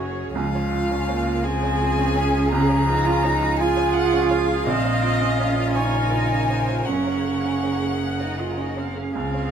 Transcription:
Already playing: double bass F#1, felt piano F#2 C#4 G#4 C#5, string section F#3 C#4 C#5, viola F#4, cello G#4
0.00 felt piano F#4
0.33 double bass C#2, felt piano C#2, string section C#3 F3 G#4, cello G#3, viola F4, violin F5
0.55 felt piano C#5
0.73 felt piano F4
0.91 felt piano C#4
1.08 cello A#3, felt piano C#5
1.27 felt piano F4
1.44 cello C4, viola G#4, violin G#5
1.63 felt piano C#5
1.81 felt piano F4
1.98 felt piano C#4
2.16 cello C#4, felt piano C#5
2.34 felt piano F4
2.52 felt piano C#2, cello C#4, violin A#5
2.69 felt piano C#5
2.88 cello D#4, felt piano F4
3.06 felt piano C#4, cello F4
3.24 cello D#4, felt piano C#5
3.42 felt piano F4
3.59 cello F4, viola G#4, violin G#5
3.77 felt piano C#5
3.93 felt piano F4, violin F#5
4.13 felt piano C#4
4.29 felt piano C#5, violin F5
4.49 felt piano F4
4.64 double bass A#1, felt piano A#1, string section C#3 F4 A#4, cello C4, viola D#5
4.84 felt piano C#5
5.03 felt piano F4
5.21 felt piano C#4
5.39 cello C#4, felt piano C#5
5.59 felt piano F4
5.74 cello D#4, viola C#5, violin G#5
5.94 felt piano C#5
6.11 felt piano F4, viola A#4
6.31 felt piano C#4
6.48 viola C5, felt piano C#5
6.70 felt piano F4
6.85 double bass F#1, felt piano F#2, cello C#4, string section G#4, viola C#5, violin F#5
7.07 felt piano C#5
7.25 felt piano G#4
7.45 felt piano C#4
7.63 felt piano C#5
7.82 felt piano G#4
8.01 viola F#5
8.20 cello D#4, felt piano C#5
8.39 cello F4, felt piano G#4, viola D#5
8.57 felt piano C#4, cello D#4
8.77 cello C4, felt piano C#5, viola F5
8.95 cello C#4, felt piano G#4
9.14 felt piano C#2, double bass C#2, string section C#3 F4 F5, cello C4, viola G#4, violin F5
9.34 felt piano C#5

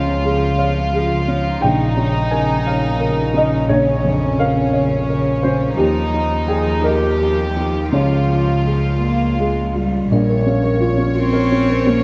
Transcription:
Already playing: upright piano C#2 C#4 C#5, double bass C#2, cello F3, violin section F4
0.24 cello F3, upright piano G#4
0.58 cello F3, upright piano C#5 F5
0.93 cello F3, upright piano G#4
1.27 cello F3, upright piano C#4
1.61 double bass A#1, upright piano A#1 G5, cello C#3, violin section D#4
1.97 cello C#3, upright piano C#4
2.31 cello C#3, upright piano A#4 G#5
2.66 cello C#3, upright piano C#5 F5
2.99 cello C#3, upright piano A#4
3.34 cello C#3, upright piano C#4 D#5
3.68 upright piano A#1 C#5, cello C#3, violin section C#4
4.03 upright piano F2, cello C#3
4.37 cello C#3, upright piano A#4 F5
4.72 cello C#3, upright piano C#5
5.08 cello C#3, upright piano A#4
5.42 cello C#3, upright piano C#4 C5
5.77 double bass D#2, upright piano D#2 G4, cello F3, violin section D#4
6.11 cello F3, upright piano D#4
6.48 cello F3, upright piano G#4 G5
6.82 cello F3, violin section G4, upright piano A#4 D#5
7.18 cello F3, upright piano G4
7.54 cello F3, upright piano D#4
7.91 upright piano C#2 C#5, double bass C#2, cello F3, violin section F4
8.28 cello F3, upright piano F4
8.64 cello F3, upright piano G#4
9.01 cello A#3, upright piano F5
9.39 cello G#3, upright piano G#4
9.75 cello G3, upright piano F4
10.11 upright piano A#1, double bass A#1, vibraphone A#4, violin section C#5
10.29 upright piano A#4, vibraphone C#5
10.46 upright piano C#4, vibraphone F5
10.63 upright piano A#4, vibraphone A#4
10.80 upright piano F4, vibraphone C#5
10.98 upright piano C#4
11.02 vibraphone C#5
11.15 cello C4, upright piano F4, vibraphone A#4
11.33 upright piano A#4
11.52 upright piano C#4
11.70 upright piano C4, vibraphone A#4
11.87 cello A#3, upright piano C#4

